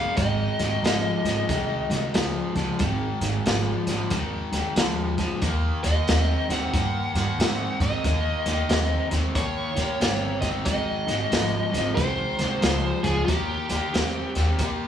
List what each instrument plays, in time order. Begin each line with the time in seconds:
Already playing: overdriven electric guitar C#3 A#3, lead electric guitar F5
0.17 upright bass G#1, overdriven electric guitar G#2 D#3, lead electric guitar D#5, kick, snare, closed hi-hat
0.59 upright bass G#1, overdriven electric guitar G#2 D#3, snare, closed hi-hat
0.83 upright bass G#1, overdriven electric guitar G#2 F3, snare, closed hi-hat
1.24 upright bass G#1, overdriven electric guitar G#2 F3, snare, closed hi-hat
1.49 upright bass C2, overdriven electric guitar G#2 D#3, kick, snare, closed hi-hat
1.90 upright bass C2, overdriven electric guitar G#2 D#3, snare, closed hi-hat
2.14 upright bass C#2, overdriven electric guitar G#2 F3, snare, closed hi-hat
2.55 upright bass C#2, overdriven electric guitar G#2 F3, kick, snare, closed hi-hat
2.79 upright bass G#1, overdriven electric guitar G#2 D#3, kick, snare, closed hi-hat
3.21 upright bass G#1, overdriven electric guitar G#2 D#3, snare, closed hi-hat
3.46 upright bass G#1, overdriven electric guitar G#2 F3, snare, closed hi-hat
3.87 upright bass G#1, overdriven electric guitar G#2 F3, snare, closed hi-hat
4.10 upright bass D#2, overdriven electric guitar G#2 D#3, kick, snare, closed hi-hat
4.52 upright bass D#2, overdriven electric guitar G#2 D#3, snare, closed hi-hat
4.76 upright bass D#2, overdriven electric guitar G#2 F3, snare, closed hi-hat
5.18 overdriven electric guitar G#2 F3, kick, snare, closed hi-hat
5.42 upright bass D#2, overdriven electric guitar D#3 A#3, kick, snare, closed hi-hat
5.84 upright bass D#2, overdriven electric guitar D#3 A#3, lead electric guitar D#5, snare, closed hi-hat
6.08 upright bass D#2, overdriven electric guitar D#3 C4, snare, closed hi-hat
6.49 upright bass D#2, overdriven electric guitar D#3 C4, lead electric guitar F#5, snare, closed hi-hat
6.73 upright bass G2, overdriven electric guitar D#3 A#3, kick, snare, closed hi-hat
7.14 upright bass G2, overdriven electric guitar D#3 A#3, lead electric guitar F#5, snare, closed hi-hat
7.38 upright bass G#2, overdriven electric guitar D#3 C4, snare, closed hi-hat
7.80 upright bass G#2, overdriven electric guitar D#3 C4, lead electric guitar D#5, kick, snare, closed hi-hat
8.04 upright bass D#2, overdriven electric guitar D#3 A#3, kick, snare, closed hi-hat
8.46 upright bass D#2, overdriven electric guitar D#3 A#3, snare, closed hi-hat
8.69 upright bass D#2, overdriven electric guitar D#3 C4, snare, closed hi-hat
9.11 upright bass D#2, overdriven electric guitar D#3 C4, snare, closed hi-hat
9.35 upright bass A#2, overdriven electric guitar D#3 A#3, lead electric guitar C#5, kick, snare, closed hi-hat
9.76 upright bass A#2, overdriven electric guitar D#3 A#3, snare, closed hi-hat
10.01 upright bass G1, overdriven electric guitar D#3 C4, snare, closed hi-hat
10.41 overdriven electric guitar D#3 C4, lead electric guitar D#5, kick, snare, closed hi-hat
10.65 upright bass G#1, overdriven electric guitar G#2 D#3, lead electric guitar D#5, kick, snare, closed hi-hat
11.07 upright bass G#1, overdriven electric guitar G#2 D#3, snare, closed hi-hat
11.31 upright bass G#1, overdriven electric guitar G#2 F3, snare, closed hi-hat
11.72 upright bass G#1, overdriven electric guitar G#2 F3, snare, closed hi-hat
11.95 upright bass C2, overdriven electric guitar G#2 D#3, lead electric guitar C5, kick, snare, closed hi-hat
12.39 upright bass C2, overdriven electric guitar G#2 D#3, snare, closed hi-hat
12.62 upright bass C#2, overdriven electric guitar G#2 F3, snare, closed hi-hat
13.03 upright bass C#2, overdriven electric guitar G#2 F3, lead electric guitar G#4, kick, snare, closed hi-hat
13.26 upright bass D#2, overdriven electric guitar D#3 A#3, lead electric guitar G4, kick, snare, closed hi-hat
13.69 upright bass D#2, overdriven electric guitar D#3 A#3, snare, closed hi-hat
13.93 upright bass D#2, overdriven electric guitar D#3 C4, snare, closed hi-hat
14.35 upright bass D#2, overdriven electric guitar D#3 C4, snare, closed hi-hat
14.59 upright bass A#2, overdriven electric guitar D#3 A#3, kick, snare, closed hi-hat